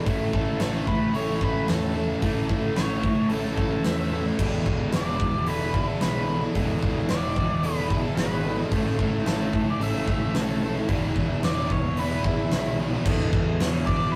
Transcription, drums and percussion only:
0.06 kick, open hi-hat
0.33 kick
0.60 snare, open hi-hat
0.87 kick
1.14 open hi-hat
1.41 kick
1.68 snare, open hi-hat
2.22 kick, open hi-hat
2.49 kick
2.76 snare, open hi-hat
3.03 kick
3.30 open hi-hat
3.58 kick
3.84 snare, open hi-hat
4.39 kick, crash
4.66 kick
4.92 snare, open hi-hat
5.20 kick
5.46 open hi-hat
5.74 kick
6.01 snare, open hi-hat
6.55 kick, open hi-hat
6.83 kick
7.09 snare, open hi-hat
7.36 kick
7.63 open hi-hat
7.90 kick
8.17 snare, open hi-hat
8.72 kick, open hi-hat
8.99 kick
9.26 snare, open hi-hat
9.53 kick
9.81 open hi-hat
10.08 kick
10.35 snare, open hi-hat
10.89 kick, open hi-hat
11.16 kick
11.43 snare, open hi-hat
11.70 kick
11.97 open hi-hat
12.24 kick
12.51 snare, open hi-hat
13.06 kick, crash
13.33 kick
13.60 snare, open hi-hat
13.87 kick

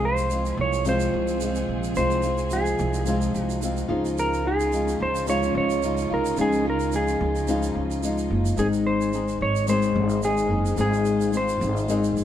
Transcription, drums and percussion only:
0.18 shaker
0.30 shaker
0.46 shaker
0.73 shaker
0.85 shaker
1.00 shaker
1.28 shaker
1.41 shaker
1.55 shaker
1.84 shaker
1.95 shaker
2.11 shaker
2.22 shaker
2.38 shaker
2.51 shaker
2.66 shaker
2.79 shaker
2.94 shaker
3.06 shaker
3.21 shaker
3.35 shaker
3.50 shaker
3.62 shaker
3.77 shaker
4.05 shaker
4.18 shaker
4.34 shaker
4.60 shaker
4.73 shaker
4.88 shaker
5.15 shaker
5.27 shaker
5.43 shaker
5.70 shaker
5.83 shaker
5.97 shaker
6.25 shaker
6.37 shaker
6.53 shaker
6.80 shaker
6.92 shaker
7.08 shaker
7.36 shaker
7.48 shaker
7.63 shaker
7.91 shaker
8.03 shaker
8.18 shaker
8.46 shaker
8.57 shaker
8.73 shaker
9.01 shaker
9.13 shaker
9.28 shaker
9.56 shaker
9.68 shaker
9.82 shaker
10.10 shaker
10.22 shaker
10.37 shaker
10.66 shaker
10.77 shaker
10.93 shaker
11.05 shaker
11.21 shaker
11.33 shaker
11.49 shaker
11.62 shaker
11.77 shaker
11.89 shaker
12.04 shaker
12.17 shaker

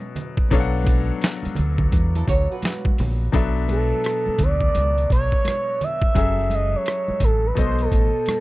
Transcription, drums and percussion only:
0.02 muted conga
0.16 closed hi-hat, low conga
0.37 kick
0.49 kick, closed hi-hat, muted conga
0.84 kick, closed hi-hat, high conga
1.22 snare, closed hi-hat, muted conga
1.43 closed hi-hat, high conga
1.55 closed hi-hat, low conga
1.78 kick, low conga
1.91 kick, closed hi-hat, high conga
2.15 closed hi-hat
2.28 kick, closed hi-hat
2.62 snare, closed hi-hat, muted conga, high conga
2.85 kick, muted conga, high conga
2.98 open hi-hat, low conga
3.33 kick, closed hi-hat, muted conga
3.68 closed hi-hat, high conga
4.04 cross-stick, closed hi-hat, muted conga
4.26 high conga
4.39 kick, closed hi-hat, low conga
4.61 kick
4.75 closed hi-hat, muted conga, high conga
4.98 closed hi-hat, muted conga
5.10 kick, closed hi-hat
5.32 kick
5.45 cross-stick, closed hi-hat, muted conga, high conga
5.81 closed hi-hat, low conga
6.02 kick
6.15 kick, closed hi-hat, muted conga
6.37 muted conga
6.50 closed hi-hat, high conga
6.86 cross-stick, closed hi-hat, muted conga
7.08 high conga
7.20 kick, closed hi-hat, low conga
7.56 kick, closed hi-hat, muted conga, high conga
7.79 closed hi-hat
7.92 kick, closed hi-hat
8.26 cross-stick, closed hi-hat, muted conga, high conga

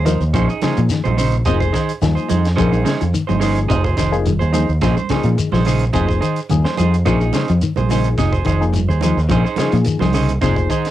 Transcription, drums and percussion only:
0.06 closed hi-hat, high conga, shekere
0.21 shekere
0.34 kick, closed hi-hat, high conga, low conga, shekere
0.50 shekere
0.62 snare, closed hi-hat, high conga, shekere
0.77 closed hi-hat, shekere
0.89 snare, closed hi-hat, high conga, shekere
1.05 high conga, low conga, shekere
1.18 open hi-hat, high conga, shekere
1.32 closed hi-hat, low conga, shekere
1.45 kick, closed hi-hat, high conga, shekere
1.60 kick, shekere
1.74 kick, snare, closed hi-hat, shekere
1.89 closed hi-hat, shekere
2.02 snare, closed hi-hat, high conga, shekere
2.17 shekere
2.29 closed hi-hat, high conga, shekere
2.45 snare, closed hi-hat, shekere
2.57 kick, closed hi-hat, high conga, low conga, shekere
2.73 high conga, shekere
2.86 snare, closed hi-hat, high conga, shekere
3.01 closed hi-hat, shekere
3.14 closed hi-hat, high conga, shekere
3.29 high conga, low conga, shekere
3.42 open hi-hat, high conga, shekere
3.56 closed hi-hat, shekere
3.70 kick, closed hi-hat, high conga, shekere
3.85 kick, shekere
3.97 kick, snare, closed hi-hat, shekere
4.13 shekere
4.26 closed hi-hat, high conga, shekere
4.41 shekere
4.54 closed hi-hat, high conga, shekere
4.69 shekere
4.81 kick, snare, closed hi-hat, high conga, low conga, shekere
4.97 high conga, shekere
5.09 kick, snare, closed hi-hat, high conga, shekere
5.23 closed hi-hat, shekere
5.38 closed hi-hat, high conga, shekere
5.52 snare, high conga, low conga, shekere
5.65 open hi-hat, high conga, shekere
5.79 closed hi-hat, shekere
5.93 kick, closed hi-hat, high conga, shekere
6.09 kick, shekere
6.22 closed hi-hat, shekere
6.36 closed hi-hat, shekere
6.49 closed hi-hat, high conga, shekere
6.65 snare, shekere
6.77 closed hi-hat, high conga, shekere
6.94 closed hi-hat, shekere
7.06 kick, closed hi-hat, high conga, low conga, shekere
7.21 shekere
7.33 snare, closed hi-hat, high conga, shekere
7.48 closed hi-hat, shekere
7.61 closed hi-hat, high conga, shekere
7.76 high conga, low conga, shekere
7.89 open hi-hat, high conga, shekere
8.04 closed hi-hat, shekere
8.18 kick, snare, closed hi-hat, shekere
8.33 kick, shekere
8.45 kick, closed hi-hat, shekere
8.62 shekere
8.73 closed hi-hat, high conga, shekere
8.91 shekere
9.01 closed hi-hat, high conga, shekere
9.18 shekere
9.29 kick, closed hi-hat, high conga, low conga, shekere
9.46 shekere
9.56 snare, closed hi-hat, high conga, shekere
9.72 closed hi-hat, shekere
9.85 closed hi-hat, high conga, shekere
9.99 snare, high conga, low conga, shekere
10.13 open hi-hat, high conga, shekere
10.27 closed hi-hat, low conga, shekere
10.41 kick, snare, closed hi-hat, high conga, shekere
10.57 kick, shekere
10.70 kick, closed hi-hat, shekere
10.85 snare, closed hi-hat, shekere

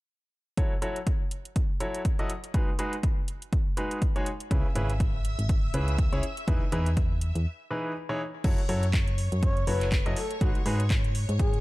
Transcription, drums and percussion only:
0.57 kick, closed hi-hat
0.82 closed hi-hat
0.96 closed hi-hat
1.07 kick, closed hi-hat
1.31 closed hi-hat
1.45 closed hi-hat
1.56 kick, closed hi-hat
1.80 closed hi-hat
1.94 closed hi-hat
2.05 kick, closed hi-hat
2.19 closed hi-hat
2.30 closed hi-hat
2.44 closed hi-hat
2.54 kick, closed hi-hat
2.79 closed hi-hat
2.93 closed hi-hat
3.03 kick, closed hi-hat
3.28 closed hi-hat
3.42 closed hi-hat
3.53 kick, closed hi-hat
3.77 closed hi-hat
3.91 closed hi-hat
4.02 kick, closed hi-hat
4.16 closed hi-hat
4.26 closed hi-hat
4.40 closed hi-hat
4.51 kick, closed hi-hat
4.75 closed hi-hat
4.90 closed hi-hat
5.00 kick, closed hi-hat
5.25 closed hi-hat
5.39 closed hi-hat
5.49 kick, closed hi-hat
5.74 closed hi-hat
5.88 closed hi-hat
5.98 kick, closed hi-hat
6.13 closed hi-hat
6.23 closed hi-hat
6.37 closed hi-hat
6.48 kick, closed hi-hat
6.72 closed hi-hat
6.86 closed hi-hat
6.97 kick, closed hi-hat
7.21 closed hi-hat
7.35 closed hi-hat
8.44 kick, closed hi-hat, crash
8.58 closed hi-hat
8.69 open hi-hat
8.83 closed hi-hat
8.93 kick, clap, closed hi-hat
9.08 closed hi-hat
9.18 open hi-hat
9.32 closed hi-hat
9.43 kick, closed hi-hat
9.57 closed hi-hat
9.67 open hi-hat
9.81 clap, closed hi-hat
9.92 kick, clap, closed hi-hat
10.06 closed hi-hat
10.16 open hi-hat
10.31 closed hi-hat
10.41 kick, closed hi-hat
10.55 closed hi-hat
10.66 open hi-hat
10.80 closed hi-hat
10.90 kick, clap, closed hi-hat
11.04 closed hi-hat
11.15 open hi-hat
11.29 closed hi-hat
11.39 kick, closed hi-hat
11.54 closed hi-hat

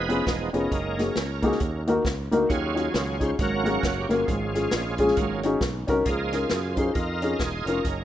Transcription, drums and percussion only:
0.10 closed hi-hat
0.27 kick, snare, closed hi-hat
0.54 closed hi-hat
0.72 kick, closed hi-hat
0.98 snare, closed hi-hat
1.16 snare, closed hi-hat
1.43 kick, closed hi-hat
1.52 snare
1.60 kick, closed hi-hat
1.87 closed hi-hat
2.05 kick, snare, closed hi-hat
2.32 closed hi-hat
2.50 kick, closed hi-hat
2.77 closed hi-hat
2.94 snare, closed hi-hat
3.21 kick, closed hi-hat
3.39 kick, closed hi-hat
3.66 closed hi-hat
3.83 kick, snare, closed hi-hat
4.10 closed hi-hat
4.28 kick, closed hi-hat
4.55 snare, closed hi-hat
4.71 snare, closed hi-hat
4.98 kick, closed hi-hat
5.08 snare
5.17 kick, closed hi-hat
5.43 closed hi-hat
5.61 kick, snare, closed hi-hat
5.88 kick, closed hi-hat
6.05 kick, closed hi-hat
6.32 snare, closed hi-hat
6.49 snare, closed hi-hat
6.77 kick, closed hi-hat
6.95 kick, closed hi-hat
7.22 closed hi-hat
7.39 kick, snare, closed hi-hat
7.67 closed hi-hat
7.85 kick, closed hi-hat

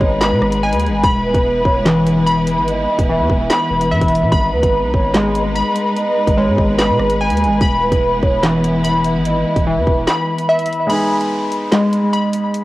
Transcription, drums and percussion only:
0.01 kick
0.21 snare, clap, closed hi-hat
0.42 cross-stick
0.52 closed hi-hat
0.73 closed hi-hat
0.80 closed hi-hat
0.86 closed hi-hat
1.03 kick, closed hi-hat
1.34 kick, closed hi-hat
1.65 kick
1.86 snare, clap, closed hi-hat
2.07 closed hi-hat
2.27 closed hi-hat
2.47 closed hi-hat
2.68 closed hi-hat
2.99 kick, closed hi-hat
3.30 kick
3.50 snare, clap, closed hi-hat
3.81 closed hi-hat
4.01 kick, closed hi-hat
4.08 closed hi-hat
4.15 closed hi-hat
4.32 kick, closed hi-hat
4.63 kick, closed hi-hat
4.94 kick
5.14 snare, clap, closed hi-hat
5.35 closed hi-hat
5.56 closed hi-hat
5.76 closed hi-hat
5.97 closed hi-hat
6.27 kick, closed hi-hat
6.58 kick
6.79 snare, clap, closed hi-hat
6.99 cross-stick
7.10 closed hi-hat
7.30 closed hi-hat
7.37 closed hi-hat
7.44 closed hi-hat
7.61 kick, closed hi-hat
7.92 kick, closed hi-hat
8.23 kick
8.43 snare, clap, closed hi-hat
8.64 closed hi-hat
8.85 closed hi-hat
9.04 closed hi-hat
9.25 closed hi-hat
9.56 kick, closed hi-hat
9.87 kick
10.07 snare, clap, closed hi-hat
10.38 closed hi-hat
10.59 closed hi-hat
10.66 closed hi-hat
10.73 closed hi-hat
10.90 closed hi-hat
11.21 closed hi-hat
11.52 closed hi-hat
11.72 snare, clap, closed hi-hat
11.93 closed hi-hat
12.13 closed hi-hat
12.33 closed hi-hat
12.54 closed hi-hat

